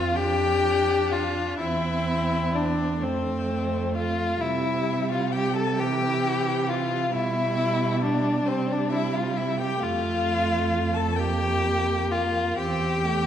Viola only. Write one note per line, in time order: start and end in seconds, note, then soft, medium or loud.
0.00 0.15 C4 medium
0.15 1.61 D4 medium
1.60 3.02 C4 medium
3.03 4.39 A3 medium
4.42 5.80 G3 medium
5.79 7.13 E3 medium
7.14 8.43 G3 medium
8.46 9.78 G3 medium
9.81 11.15 A3 medium
11.18 12.56 A#3 medium
12.59 13.06 C4 medium
13.05 13.27 A3 medium